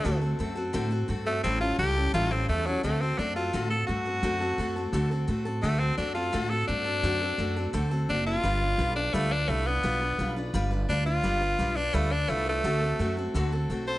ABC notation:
X:1
M:4/4
L:1/8
Q:1/4=171
K:Dmix
V:1 name="Steel-string acoustic guitar"
[D,A,CFA] [CFA] [A,CFA] [CFA] [D,A,CFA] [CFA] [A,CFA] [CFA] | [A,,E,G,^CEA] [G,CEA] [G,CEA] [G,CEA] [A,,E,G,CEA] [G,CEA] [G,CEA] [G,CEA] | [D,A,CFA] [CFA] [A,CFA] [CFA] [D,A,CFA] [CFA] [A,CFA] [CFA] | [D,A,CFA] [CFA] [A,CFA] [CFA] [D,A,CFA] [CA] [A,CFA] [CFA] |
[D,A,CFA] [CFA] [A,CFA] [CFA] [D,A,CFA] [CFA] [A,CFA] [CFA] | [D,A,CFA] [CFA] [A,CFA] [CFA] [D,A,CFA] [CFA] [A,CFA] [CFA] | [G,D=FB] [DB] [G,DFB] [DFB] [G,DFB] [DFB] [G,DFB] [DFB] | [G,D=FB] [DFB] [G,DFB] [DFB] [G,DFB] [DFB] [G,DFB] [DFB] |
[G,D=FB] [DFB] [G,DFB] [DFB] [G,DFB] [DFB] [G,DFB] [DFB] | [D,A,CFA] [CFA] [A,CFA] [CFA] [D,A,CFA] [CFA] [A,CFA] [CFA] |]
V:2 name="Tenor saxophone"
A, z6 A, | C =F G2 F C A, ^F, | A, C D =F2 A ^F2- | F4 z4 |
A, C D =F2 A D2- | D4 z2 D =F- | =F3 D A, D A, B,- | B,3 z3 D =F- |
=F3 D A, D A, A,- | A,3 z4 c |]
V:3 name="Upright bass" clef=bass
D,,2 F,,2 A,,2 G,,2 | A,,,2 ^C,,2 A,,,2 E,,2 | D,,2 F,,2 A,,2 G,,2 | F,,2 F,,2 D,,2 A,,2 |
D,,2 F,,2 A,,2 G,,2 | F,,2 F,,2 D,,2 F,,,2 | G,,,2 B,,,2 D,,2 C,,2 | B,,,2 B,,,2 G,,,2 D,,2 |
G,,,2 B,,,2 D,,2 C,,2 | D,,2 F,,2 D,,2 B,,,2 |]